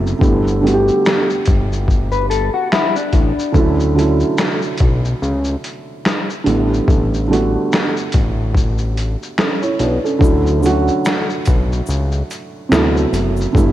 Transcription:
0.00 0.14 F#1 medium
0.00 0.12 C3 medium
0.00 0.12 F#3 medium
0.00 0.13 A3 medium
0.00 0.14 B3 medium
0.00 0.18 E4 medium
0.07 shaker soft
0.19 0.91 G1 loud
0.19 0.57 D3 medium
0.19 0.58 G3 medium
0.19 0.59 A3 medium
0.19 kick loud
0.19 shaker medium
0.23 0.60 B3 medium
0.23 0.60 E4 medium
0.47 shaker soft
0.61 2.12 D3 medium
0.61 2.12 G3 medium
0.61 2.13 A3 medium
0.61 2.13 B3 medium
0.67 0.72 F#4 medium
0.67 closed hi-hat medium
0.67 shaker soft
0.73 2.18 G4 medium
0.88 shaker soft
1.06 finger snap loud
1.06 snare loud
1.06 shaker medium
1.30 shaker soft
1.46 2.50 G1 medium
1.46 kick medium
1.46 closed hi-hat medium
1.46 shaker medium
1.72 shaker medium
1.88 kick medium
1.88 shaker medium
2.12 2.29 B4 medium
2.12 shaker soft
2.30 2.52 A4 medium
2.30 closed hi-hat medium
2.30 shaker soft
2.54 2.70 F#4 medium
2.72 2.94 E4 medium
2.72 finger snap loud
2.72 snare loud
2.72 shaker medium
2.96 3.52 D4 medium
2.96 shaker medium
3.13 3.33 A1 loud
3.13 kick medium
3.13 closed hi-hat medium
3.13 shaker soft
3.39 shaker soft
3.52 4.24 D2 loud
3.52 3.91 D3 medium
3.52 3.91 F#3 medium
3.52 3.92 A3 medium
3.52 3.93 C#4 medium
3.52 kick loud
3.52 shaker medium
3.58 3.93 E4 medium
3.80 shaker soft
3.95 5.45 D3 medium
3.95 5.46 F#3 medium
3.95 5.46 A3 medium
3.95 5.47 C#4 medium
3.99 5.48 E4 medium
3.99 closed hi-hat medium
3.99 shaker soft
4.20 shaker soft
4.37 finger snap loud
4.37 snare loud
4.37 shaker medium
4.62 shaker soft
4.78 5.15 B1 medium
4.78 kick medium
4.78 closed hi-hat medium
4.78 shaker medium
5.05 shaker medium
5.22 5.56 C#2 medium
5.22 shaker medium
5.44 shaker soft
5.64 closed hi-hat medium
5.64 shaker soft
6.05 finger snap medium
6.05 snare loud
6.05 shaker medium
6.30 shaker soft
6.44 6.81 A1 loud
6.44 7.20 D3 medium
6.44 7.20 G3 medium
6.44 7.21 A3 medium
6.44 closed hi-hat medium
6.44 shaker soft
6.48 7.22 B3 medium
6.48 7.22 E4 medium
6.74 shaker soft
6.88 7.57 A1 loud
6.88 kick loud
6.88 shaker medium
7.14 shaker soft
7.28 8.78 D3 medium
7.28 8.79 G3 medium
7.28 8.80 A3 medium
7.32 8.80 B3 medium
7.32 8.81 F#4 medium
7.32 closed hi-hat medium
7.32 shaker soft
7.72 finger snap medium
7.72 snare loud
7.72 shaker medium
7.97 shaker soft
8.12 9.16 A1 medium
8.12 kick medium
8.12 closed hi-hat medium
8.12 shaker medium
8.55 kick medium
8.55 shaker medium
8.78 shaker soft
8.97 closed hi-hat medium
8.97 shaker soft
9.23 shaker medium
9.38 9.61 C#4 soft
9.38 9.61 A4 medium
9.38 finger snap medium
9.38 snare loud
9.38 shaker medium
9.62 9.79 E4 medium
9.62 9.79 C#5 medium
9.62 shaker medium
9.79 9.99 B1 medium
9.79 10.03 D4 soft
9.79 10.03 B4 medium
9.79 closed hi-hat medium
9.79 shaker soft
10.04 10.21 C#4 medium
10.04 10.43 A4 medium
10.04 shaker soft
10.19 10.90 D2 medium
10.19 10.57 D3 medium
10.19 10.58 F#3 medium
10.19 10.59 A3 medium
10.19 10.59 C#4 medium
10.19 kick loud
10.19 shaker medium
10.24 10.60 E4 medium
10.24 shaker medium
10.47 shaker soft
10.61 12.11 D3 medium
10.61 12.12 F#3 medium
10.61 12.13 A3 medium
10.61 shaker medium
10.65 12.13 C#4 medium
10.65 12.14 F#4 medium
10.65 closed hi-hat medium
10.65 shaker soft
10.88 shaker soft
11.05 finger snap loud
11.05 snare loud
11.05 shaker medium
11.30 shaker soft
11.45 11.82 B1 medium
11.45 kick medium
11.45 closed hi-hat medium
11.45 shaker soft
11.45 shaker medium
11.72 shaker medium
11.86 12.23 C#2 medium
11.86 shaker medium
11.90 shaker medium
12.12 shaker soft
12.31 closed hi-hat medium
12.31 shaker medium
12.31 shaker soft
12.69 13.06 D2 loud
12.69 13.45 C3 medium
12.69 12.78 E3 medium
12.69 13.46 A3 medium
12.69 13.47 B3 medium
12.69 finger snap medium
12.69 snare loud
12.69 shaker medium
12.75 13.49 F#3 medium
12.75 13.48 E4 medium
12.97 shaker medium
13.13 13.47 F#1 medium
13.13 closed hi-hat medium
13.13 shaker medium
13.13 shaker soft
13.37 shaker medium
13.41 shaker soft
13.53 13.72 G1 loud
13.53 13.72 D3 medium
13.53 13.72 G3 medium
13.53 13.72 A3 medium
13.53 13.72 B3 medium
13.53 kick loud
13.53 shaker medium
13.57 13.72 E4 medium
13.57 shaker medium

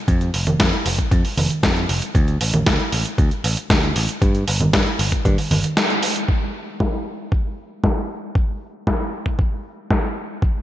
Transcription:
0.08 0.29 F2 loud
0.08 kick loud
0.08 closed hi-hat medium
0.21 closed hi-hat soft
0.34 0.55 F1 medium
0.34 open hi-hat loud
0.47 closed hi-hat medium
0.47 high conga medium
0.60 0.70 F2 medium
0.60 kick loud
0.60 snare loud
0.60 closed hi-hat medium
0.73 closed hi-hat soft
0.86 0.96 F1 medium
0.86 open hi-hat loud
0.98 kick medium
0.98 closed hi-hat medium
1.11 1.22 F2 loud
1.11 kick loud
1.11 closed hi-hat medium
1.25 open hi-hat medium
1.37 1.48 F1 medium
1.37 open hi-hat loud
1.37 high conga medium
1.50 closed hi-hat medium
1.63 1.84 F2 medium
1.63 kick loud
1.63 snare loud
1.63 closed hi-hat soft
1.76 closed hi-hat soft
1.89 2.00 F1 medium
1.89 open hi-hat loud
2.02 closed hi-hat medium
2.15 2.36 D2 loud
2.15 kick loud
2.15 closed hi-hat medium
2.28 closed hi-hat soft
2.41 2.62 A1 medium
2.41 open hi-hat loud
2.54 closed hi-hat medium
2.54 high conga medium
2.67 2.77 D2 medium
2.67 kick loud
2.67 snare loud
2.67 closed hi-hat medium
2.79 closed hi-hat soft
2.92 3.03 A1 medium
2.92 open hi-hat loud
3.05 closed hi-hat medium
3.18 3.29 D2 loud
3.18 kick loud
3.18 closed hi-hat medium
3.31 closed hi-hat soft
3.44 3.55 A1 medium
3.44 open hi-hat loud
3.57 closed hi-hat medium
3.70 3.91 D2 medium
3.70 kick loud
3.70 snare loud
3.70 closed hi-hat soft
3.83 closed hi-hat soft
3.96 4.07 A1 medium
3.96 open hi-hat loud
4.09 closed hi-hat medium
4.22 4.43 G2 loud
4.22 kick loud
4.22 closed hi-hat medium
4.35 closed hi-hat soft
4.48 4.69 G1 medium
4.48 open hi-hat loud
4.61 closed hi-hat medium
4.61 high conga medium
4.73 4.84 G2 medium
4.73 kick loud
4.73 snare loud
4.73 closed hi-hat medium
4.86 closed hi-hat soft
4.99 5.10 G1 medium
4.99 open hi-hat loud
5.12 kick medium
5.12 closed hi-hat medium
5.25 5.36 G2 medium
5.25 kick loud
5.25 closed hi-hat medium
5.25 high conga medium
5.38 open hi-hat medium
5.51 5.62 G1 medium
5.51 open hi-hat loud
5.51 high conga medium
5.64 closed hi-hat medium
5.77 snare loud
5.77 closed hi-hat medium
5.90 closed hi-hat soft
6.03 open hi-hat loud
6.16 closed hi-hat medium
6.29 kick loud
6.80 kick loud
6.80 snare loud
7.32 kick loud
7.84 kick loud
7.84 snare loud
8.35 kick loud
8.87 kick loud
8.87 snare loud
9.26 kick medium
9.39 kick loud
9.91 kick loud
9.91 snare loud
10.42 kick loud

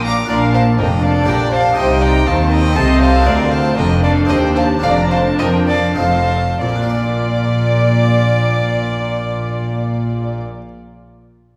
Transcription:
0.00 0.24 A#1 medium
0.00 0.21 A#2 medium
0.00 0.24 A#2 medium
0.00 0.23 D4 medium
0.00 0.24 F4 medium
0.00 0.25 A#4 medium
0.05 0.14 D4 medium
0.05 0.14 F5 medium
0.05 0.29 A#5 medium
0.05 0.29 D6 loud
0.25 1.22 D4 medium
0.25 1.24 F4 medium
0.25 1.24 A#4 medium
0.29 0.75 A#1 medium
0.29 0.75 A#2 medium
0.29 0.76 D4 medium
0.29 0.53 A#4 medium
0.29 0.38 D5 medium
0.29 0.54 F5 loud
0.54 0.62 C5 medium
0.54 0.62 F5 medium
0.54 0.79 A5 loud
0.78 1.28 F1 medium
0.78 1.28 F2 medium
0.78 1.24 F2 medium
0.78 1.75 D4 medium
0.78 0.87 A#4 medium
0.78 1.05 D#5 medium
0.78 1.03 G5 loud
1.03 1.27 A4 medium
1.03 1.30 D5 loud
1.03 1.11 F5 loud
1.24 1.73 D4 medium
1.24 1.73 G4 medium
1.24 1.75 D5 medium
1.28 1.77 A#1 medium
1.28 1.77 A#2 medium
1.28 1.73 A#2 medium
1.28 1.53 D5 loud
1.28 1.52 G5 medium
1.28 1.36 A#5 loud
1.52 1.76 C5 medium
1.52 1.77 F5 loud
1.52 1.61 A5 loud
1.73 2.71 D#4 medium
1.73 2.71 G4 medium
1.73 2.72 C5 medium
1.77 2.25 C2 medium
1.77 2.25 C3 medium
1.77 2.22 C3 medium
1.77 2.26 D#4 medium
1.77 2.01 C5 loud
1.77 2.04 D#5 medium
1.77 2.01 G5 loud
2.01 2.10 D5 medium
2.01 2.28 G5 loud
2.01 2.26 A#5 loud
2.26 2.75 D#2 medium
2.26 2.75 D#3 medium
2.26 2.72 D#3 medium
2.26 3.77 C4 loud
2.26 2.51 C5 medium
2.26 2.51 F5 medium
2.26 2.51 A5 loud
2.51 2.76 A#4 medium
2.51 2.77 D#5 loud
2.51 2.76 G5 loud
2.72 3.26 C3 medium
2.72 3.23 D#4 medium
2.72 3.23 A4 medium
2.72 3.24 C5 medium
2.72 3.00 D#5 loud
2.72 3.00 A5 medium
2.72 3.00 C6 loud
2.77 3.26 C2 medium
2.77 3.22 C3 medium
3.00 3.26 C5 loud
3.00 3.28 F5 loud
3.00 3.26 A5 loud
3.22 4.24 D4 medium
3.22 4.25 F4 medium
3.22 4.26 A#4 medium
3.22 3.51 F5 loud
3.26 3.77 D2 loud
3.26 3.74 D2 medium
3.26 3.78 D2 medium
3.26 3.51 A#4 medium
3.26 3.53 D5 medium
3.51 3.77 C5 loud
3.51 3.77 F5 medium
3.51 3.77 A5 loud
3.77 4.29 F1 medium
3.77 4.26 F2 medium
3.77 4.29 F2 medium
3.77 4.82 D4 medium
3.77 4.03 A#4 medium
3.77 4.03 D#5 medium
3.77 4.03 G5 loud
4.03 4.29 A4 medium
4.03 4.11 D5 loud
4.03 4.29 F5 loud
4.25 4.80 C4 medium
4.25 4.80 D#4 medium
4.25 4.81 G4 medium
4.29 4.82 D#2 medium
4.29 4.80 D#2 medium
4.29 4.83 D#2 medium
4.29 4.55 C5 loud
4.29 4.37 D#5 medium
4.29 4.56 G5 loud
4.56 4.64 C5 medium
4.56 4.64 F5 medium
4.56 4.83 A5 loud
4.79 5.93 D4 medium
4.79 5.94 F4 medium
4.79 4.91 F5 medium
4.79 5.10 A#5 loud
4.83 5.38 F1 medium
4.83 5.38 F2 medium
4.83 5.36 F2 medium
4.83 5.96 D4 medium
4.83 5.11 D5 loud
5.11 5.39 C5 medium
5.11 5.19 F5 medium
5.11 5.39 A5 loud
5.39 5.98 F2 medium
5.39 5.98 F3 medium
5.39 5.95 F3 medium
5.39 5.68 A#4 loud
5.39 5.47 D#5 loud
5.39 5.68 G5 loud
5.68 5.76 A4 medium
5.68 5.97 D5 loud
5.68 5.98 F5 loud
5.94 6.58 C4 medium
5.94 6.36 C4 medium
5.94 6.58 D#4 medium
5.94 6.59 F4 medium
5.94 6.60 C5 medium
5.94 6.60 F5 medium
5.99 6.60 F1 medium
5.99 6.58 F2 medium
5.99 6.60 F2 medium
5.99 6.62 A5 loud
6.61 10.41 A#1 medium
6.61 10.41 A#2 medium
6.61 10.40 F4 medium
6.61 10.40 D5 medium
6.61 10.41 D5 medium
6.61 10.40 D6 medium
6.69 10.48 A#3 medium
6.76 10.55 D4 medium
6.83 10.62 F4 medium
6.89 10.68 D5 medium

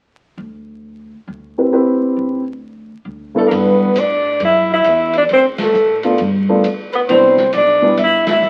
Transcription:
0.37 1.11 D2 medium
1.27 2.01 D2 medium
1.58 1.71 C4 soft
1.58 1.71 E4 soft
1.58 1.71 G4 soft
1.58 1.72 B4 soft
1.73 2.41 C4 medium
1.73 2.41 E4 medium
1.73 2.41 G4 soft
1.73 2.41 B4 medium
2.16 2.90 D2 medium
3.05 3.47 D2 medium
3.35 3.92 G2 medium
3.35 3.49 A3 medium
3.35 3.93 B3 soft
3.35 3.93 D4 medium
3.35 3.93 E4 medium
3.35 3.93 A4 medium
3.35 3.49 A4 medium
3.48 3.94 G2 medium
3.48 3.55 A#3 medium
3.48 3.57 A#4 soft
3.48 ride medium
3.54 4.01 B3 medium
3.54 4.01 B4 medium
3.95 4.39 A2 medium
3.95 hi-hat pedal medium
3.95 ride medium
3.99 4.42 D4 medium
3.99 4.43 D5 medium
4.40 4.84 F#2 medium
4.40 ride soft
4.45 4.70 E4 medium
4.45 4.70 E5 medium
4.73 5.13 E4 medium
4.73 5.13 E5 medium
4.84 5.28 E2 medium
4.84 hi-hat pedal soft
4.84 ride medium
5.13 5.24 D5 medium
5.13 ride soft
5.18 5.24 D4 medium
5.29 5.73 D2 medium
5.29 5.45 C5 medium
5.29 ride soft
5.33 5.46 C4 medium
5.58 6.01 A4 medium
5.58 snare medium
5.58 ride medium
5.63 6.02 A3 medium
5.73 6.17 A2 medium
5.73 hi-hat pedal medium
6.03 6.18 A3 medium
6.03 6.18 B3 medium
6.03 6.18 D4 medium
6.03 6.18 F4 medium
6.03 ride soft
6.18 6.63 G2 medium
6.18 ride soft
6.49 6.63 A3 medium
6.49 6.62 B3 medium
6.49 6.63 D4 medium
6.49 6.63 F4 medium
6.64 7.07 D2 medium
6.64 hi-hat pedal soft
6.64 ride soft
6.93 7.02 B3 medium
6.93 7.00 B4 medium
6.93 ride soft
7.08 7.52 C2 medium
7.08 7.35 G3 medium
7.08 7.35 B3 soft
7.08 7.51 C4 medium
7.08 7.35 D4 soft
7.08 7.35 E4 medium
7.08 7.49 C5 medium
7.08 ride soft
7.37 snare soft
7.53 7.97 B1 medium
7.53 7.95 D5 medium
7.53 hi-hat pedal soft
7.53 ride medium
7.57 7.97 D4 medium
7.82 7.96 G3 medium
7.82 7.96 B3 medium
7.82 7.96 D4 soft
7.82 7.97 E4 medium
7.97 8.41 G1 medium
7.97 8.25 E5 medium
7.97 ride medium
8.04 8.28 E4 loud
8.27 8.50 E5 medium
8.27 snare medium
8.27 ride medium
8.33 8.50 E4 medium
8.42 8.50 A1 medium
8.42 hi-hat pedal soft

